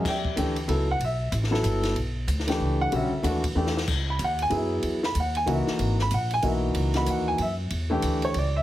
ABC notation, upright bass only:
X:1
M:3/4
L:1/8
Q:"Swing" 1/4=188
K:Elyd
V:1 name="Upright bass" clef=bass
E,,2 =D,,2 C,,2 | B,,,2 =A,,,2 =G,,,2 | B,,,2 =D,,2 C,,2 | B,,, z D,,2 E,,2 |
C,,2 D,,2 F,,2 | E,,2 D,,2 C,, z | G,,,2 A,,,2 B,,,2 | C,,2 D,,2 F,,2 |
E,,2 =D,,2 C,,2 |]